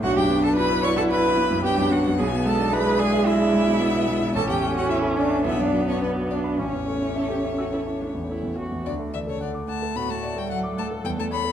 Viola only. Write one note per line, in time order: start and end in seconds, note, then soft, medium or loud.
0.04 0.58 D4 medium
0.56 1.65 E4 medium
1.65 2.18 D4 medium
2.19 2.72 B3 medium
2.73 3.82 G#3 medium
3.80 4.34 B3 medium
4.35 5.43 C#4 medium
5.45 6.61 B3 medium
6.59 7.10 C#4 medium
7.16 7.29 A4 medium
7.30 7.38 G4 medium
7.59 7.65 F#4 medium
7.73 7.81 E4 medium
8.02 8.10 D4 soft
8.30 8.57 E4 soft
8.58 8.85 F#4 medium
9.96 10.47 F#4 medium
10.50 11.52 A4 medium